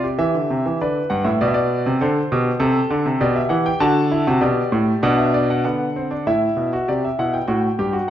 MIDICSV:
0, 0, Header, 1, 2, 480
1, 0, Start_track
1, 0, Key_signature, 0, "major"
1, 0, Tempo, 600601
1, 637, Time_signature, 4, 2, 24, 8
1, 3041, Tempo, 612870
1, 6405, End_track
2, 0, Start_track
2, 0, Title_t, "Grand piano"
2, 0, Program_c, 0, 0
2, 0, Note_on_c, 0, 48, 59
2, 30, Note_on_c, 0, 67, 60
2, 141, Note_off_c, 0, 48, 0
2, 147, Note_on_c, 0, 52, 75
2, 148, Note_on_c, 0, 76, 81
2, 269, Note_off_c, 0, 52, 0
2, 275, Note_on_c, 0, 50, 53
2, 392, Note_off_c, 0, 50, 0
2, 403, Note_on_c, 0, 48, 66
2, 516, Note_off_c, 0, 48, 0
2, 523, Note_on_c, 0, 52, 59
2, 613, Note_off_c, 0, 67, 0
2, 617, Note_off_c, 0, 76, 0
2, 636, Note_off_c, 0, 52, 0
2, 650, Note_on_c, 0, 50, 51
2, 650, Note_on_c, 0, 74, 61
2, 651, Note_on_c, 0, 71, 66
2, 795, Note_off_c, 0, 50, 0
2, 795, Note_off_c, 0, 74, 0
2, 877, Note_on_c, 0, 78, 67
2, 882, Note_on_c, 0, 43, 70
2, 993, Note_on_c, 0, 76, 62
2, 994, Note_off_c, 0, 78, 0
2, 996, Note_off_c, 0, 43, 0
2, 996, Note_on_c, 0, 45, 67
2, 1112, Note_off_c, 0, 76, 0
2, 1113, Note_off_c, 0, 45, 0
2, 1127, Note_on_c, 0, 74, 78
2, 1131, Note_on_c, 0, 47, 85
2, 1175, Note_off_c, 0, 74, 0
2, 1180, Note_on_c, 0, 76, 62
2, 1231, Note_off_c, 0, 76, 0
2, 1232, Note_on_c, 0, 74, 77
2, 1472, Note_off_c, 0, 47, 0
2, 1488, Note_on_c, 0, 48, 79
2, 1574, Note_off_c, 0, 71, 0
2, 1587, Note_off_c, 0, 74, 0
2, 1598, Note_off_c, 0, 48, 0
2, 1607, Note_on_c, 0, 69, 69
2, 1610, Note_on_c, 0, 50, 85
2, 1612, Note_on_c, 0, 72, 67
2, 1751, Note_off_c, 0, 69, 0
2, 1754, Note_off_c, 0, 50, 0
2, 1853, Note_on_c, 0, 47, 88
2, 1854, Note_on_c, 0, 67, 72
2, 1995, Note_off_c, 0, 47, 0
2, 1996, Note_off_c, 0, 67, 0
2, 2075, Note_on_c, 0, 69, 75
2, 2077, Note_on_c, 0, 48, 93
2, 2225, Note_off_c, 0, 48, 0
2, 2321, Note_on_c, 0, 50, 89
2, 2435, Note_off_c, 0, 50, 0
2, 2444, Note_on_c, 0, 48, 74
2, 2537, Note_off_c, 0, 72, 0
2, 2543, Note_off_c, 0, 69, 0
2, 2558, Note_off_c, 0, 48, 0
2, 2562, Note_on_c, 0, 74, 71
2, 2564, Note_on_c, 0, 47, 82
2, 2565, Note_on_c, 0, 67, 64
2, 2677, Note_off_c, 0, 74, 0
2, 2683, Note_on_c, 0, 76, 67
2, 2712, Note_off_c, 0, 47, 0
2, 2791, Note_on_c, 0, 78, 65
2, 2795, Note_on_c, 0, 52, 86
2, 2798, Note_off_c, 0, 76, 0
2, 2911, Note_off_c, 0, 78, 0
2, 2925, Note_on_c, 0, 79, 73
2, 2946, Note_off_c, 0, 52, 0
2, 3029, Note_off_c, 0, 67, 0
2, 3039, Note_off_c, 0, 79, 0
2, 3039, Note_on_c, 0, 50, 99
2, 3040, Note_on_c, 0, 66, 84
2, 3041, Note_on_c, 0, 81, 86
2, 3187, Note_off_c, 0, 66, 0
2, 3284, Note_on_c, 0, 64, 71
2, 3386, Note_off_c, 0, 50, 0
2, 3397, Note_off_c, 0, 64, 0
2, 3406, Note_on_c, 0, 66, 75
2, 3408, Note_on_c, 0, 48, 88
2, 3503, Note_off_c, 0, 81, 0
2, 3514, Note_on_c, 0, 74, 66
2, 3518, Note_off_c, 0, 66, 0
2, 3519, Note_off_c, 0, 48, 0
2, 3519, Note_on_c, 0, 47, 79
2, 3519, Note_on_c, 0, 67, 73
2, 3666, Note_off_c, 0, 47, 0
2, 3757, Note_on_c, 0, 45, 80
2, 3906, Note_off_c, 0, 45, 0
2, 3981, Note_off_c, 0, 74, 0
2, 3983, Note_off_c, 0, 67, 0
2, 3997, Note_on_c, 0, 62, 79
2, 4000, Note_on_c, 0, 47, 96
2, 4001, Note_on_c, 0, 78, 72
2, 4116, Note_off_c, 0, 78, 0
2, 4116, Note_on_c, 0, 76, 63
2, 4235, Note_off_c, 0, 76, 0
2, 4244, Note_on_c, 0, 74, 74
2, 4361, Note_off_c, 0, 74, 0
2, 4370, Note_on_c, 0, 78, 62
2, 4471, Note_off_c, 0, 62, 0
2, 4472, Note_off_c, 0, 47, 0
2, 4473, Note_off_c, 0, 78, 0
2, 4484, Note_on_c, 0, 78, 54
2, 4486, Note_on_c, 0, 59, 55
2, 4489, Note_on_c, 0, 50, 56
2, 4637, Note_off_c, 0, 59, 0
2, 4730, Note_on_c, 0, 60, 60
2, 4844, Note_on_c, 0, 62, 61
2, 4846, Note_off_c, 0, 60, 0
2, 4954, Note_off_c, 0, 78, 0
2, 4956, Note_off_c, 0, 50, 0
2, 4963, Note_off_c, 0, 62, 0
2, 4969, Note_on_c, 0, 45, 56
2, 4971, Note_on_c, 0, 64, 72
2, 4971, Note_on_c, 0, 76, 68
2, 5118, Note_off_c, 0, 45, 0
2, 5203, Note_on_c, 0, 47, 55
2, 5319, Note_off_c, 0, 64, 0
2, 5332, Note_on_c, 0, 66, 66
2, 5354, Note_off_c, 0, 47, 0
2, 5436, Note_off_c, 0, 76, 0
2, 5447, Note_off_c, 0, 66, 0
2, 5451, Note_on_c, 0, 67, 58
2, 5454, Note_on_c, 0, 74, 57
2, 5455, Note_on_c, 0, 48, 53
2, 5568, Note_off_c, 0, 74, 0
2, 5579, Note_on_c, 0, 76, 54
2, 5599, Note_off_c, 0, 67, 0
2, 5601, Note_off_c, 0, 48, 0
2, 5689, Note_on_c, 0, 47, 50
2, 5690, Note_off_c, 0, 76, 0
2, 5693, Note_on_c, 0, 64, 60
2, 5693, Note_on_c, 0, 78, 60
2, 5806, Note_off_c, 0, 78, 0
2, 5807, Note_on_c, 0, 79, 57
2, 5836, Note_off_c, 0, 47, 0
2, 5839, Note_off_c, 0, 64, 0
2, 5916, Note_on_c, 0, 66, 72
2, 5919, Note_on_c, 0, 45, 67
2, 6066, Note_off_c, 0, 66, 0
2, 6068, Note_off_c, 0, 45, 0
2, 6160, Note_on_c, 0, 43, 57
2, 6161, Note_on_c, 0, 67, 76
2, 6271, Note_on_c, 0, 66, 66
2, 6277, Note_off_c, 0, 67, 0
2, 6308, Note_off_c, 0, 43, 0
2, 6381, Note_off_c, 0, 79, 0
2, 6391, Note_off_c, 0, 66, 0
2, 6405, End_track
0, 0, End_of_file